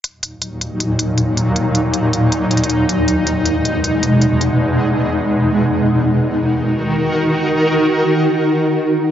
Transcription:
<<
  \new Staff \with { instrumentName = "Ambient pad" } { \clef bass \time 4/4 \key ees \phrygian \tempo 4 = 158 << { ees'1~ | ees'1~ | ees'1~ | ees'1 |
<ees ees' ges' bes'>1~ | <ees ees' ges' bes'>1 | } \\ { <ees, bes, ges>1~ | <ees, bes, ges>1 | <e, b, gis>1~ | <e, b, gis>1 |
r1 | r1 | } >> }
  \new DrumStaff \with { instrumentName = "Drums" } \drummode { \time 4/4 hh8 hh8 hh8 hh8 hh8 hh8 hh8 hh8 | hh8 hh8 hh8 hh8 \tuplet 3/2 { hh16 r16 r16 hh16 hh16 hh16 } hh8 hh8 | hh8 hh8 hh8 hh8 hh8 hh8 hh8 hh8 | r4 r4 r4 r4 |
r4 r4 r4 r4 | r4 r4 r4 r4 | }
>>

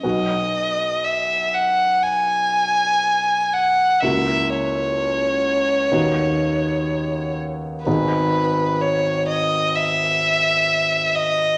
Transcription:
<<
  \new Staff \with { instrumentName = "Violin" } { \time 4/4 \key b \major \tempo 4 = 62 dis''4 e''8 fis''8 gis''4. fis''8 | e''8 cis''2. r8 | b'4 cis''8 dis''8 e''4. dis''8 | }
  \new Staff \with { instrumentName = "Grand piano" } { \time 4/4 \key b \major <b,, b fis'>1 | <cis, ais e' fis'>2 <dis, b dis' fis'>2 | <gis,, b dis' gis'>1 | }
>>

